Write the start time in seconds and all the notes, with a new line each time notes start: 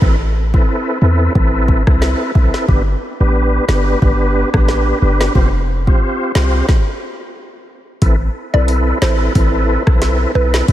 0.02 A1 C4 E4 A4 B4, kick
0.54 C4 E4 A4 B4, kick
1.02 E2 C4 E4 A4 B4
1.35 A1 C4 E4 A4 B4, kick
1.68 kick
1.87 C2 C4 E4 A4 B4, kick, cross-stick
2.02 snare
2.35 B1 C4 E4 A4 B4, kick
2.54 snare
2.68 G1 B3 D4 G4 B4, kick
3.20 A1 B3 D4 G4 B4
3.68 G1 B3 D4 G4 B4, snare
4.02 G1 B3 D4 G4 B4, kick
4.54 A1 B3 D4 G4 B4, kick, cross-stick
4.68 snare
5.02 G1 B3 D4 G4 B4
5.21 snare
5.35 F1 C4 F4 G4 C5, kick
5.87 C4 F4 G4 C5, kick
6.35 C2 C4 F4 G4 C5, snare
6.69 kick, snare
8.02 A1 C4 E4 A4 B4, kick, closed hi-hat
8.54 B1 C4 E4 A4 B4 D5
8.68 closed hi-hat
9.02 A1 C4 E4 A4 B4 C5, snare
9.35 A1 C4 E4 A4 B4, kick, closed hi-hat
9.87 B1 C4 E4 A4 B4, kick, cross-stick
10.02 snare, closed hi-hat
10.35 B1 C4 E4 A4 B4
10.54 snare
10.68 A1 C4 E4 A4 B4, kick, closed hi-hat